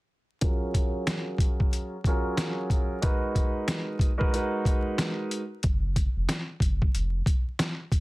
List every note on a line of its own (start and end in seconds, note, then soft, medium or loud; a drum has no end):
0.41 1.94 F#3 medium
0.41 1.94 C#4 medium
0.41 1.94 F4 medium
0.41 1.94 G#4 medium
0.41 1.95 A#4 medium
0.41 kick loud
0.41 closed hi-hat medium
0.74 kick medium
0.74 closed hi-hat medium
1.07 snare loud
1.07 snare medium
1.07 closed hi-hat loud
1.38 kick medium
1.38 closed hi-hat medium
1.60 kick medium
1.73 closed hi-hat medium
2.04 2.97 F#3 medium
2.04 2.97 C#4 medium
2.04 2.97 F4 medium
2.04 2.98 G#4 medium
2.04 2.98 A#4 loud
2.04 kick loud
2.04 closed hi-hat medium
2.37 snare loud
2.37 snare medium
2.37 closed hi-hat loud
2.70 kick medium
2.70 closed hi-hat medium
3.01 4.08 G#3 medium
3.01 4.09 D#4 medium
3.01 4.09 F#4 medium
3.01 4.09 A#4 medium
3.01 4.09 B4 loud
3.01 kick loud
3.01 closed hi-hat medium
3.35 kick medium
3.35 closed hi-hat medium
3.68 snare loud
3.68 snare medium
3.68 closed hi-hat loud
3.99 kick medium
3.99 closed hi-hat medium
4.18 4.32 G#3 medium
4.18 4.32 D#4 medium
4.18 4.33 F#4 medium
4.18 4.33 A#4 medium
4.18 4.33 B4 loud
4.18 kick medium
4.33 5.39 G#3 medium
4.33 5.40 D#4 medium
4.33 5.40 F#4 medium
4.33 5.40 A#4 medium
4.33 5.40 B4 loud
4.33 closed hi-hat medium
4.65 kick loud
4.65 closed hi-hat medium
4.98 snare loud
4.98 snare medium
4.98 closed hi-hat medium
5.31 closed hi-hat medium
5.63 6.07 F#1 loud
5.63 kick loud
5.63 closed hi-hat loud
5.96 kick medium
5.96 closed hi-hat medium
6.16 6.27 F1 medium
6.29 snare loud
6.29 closed hi-hat loud
6.60 6.88 F#1 medium
6.60 kick medium
6.60 closed hi-hat medium
6.82 kick medium
6.95 7.22 F1 loud
6.95 closed hi-hat loud
7.26 kick loud
7.26 closed hi-hat medium
7.59 snare loud
7.59 snare medium
7.59 closed hi-hat loud
7.92 kick medium
7.92 closed hi-hat medium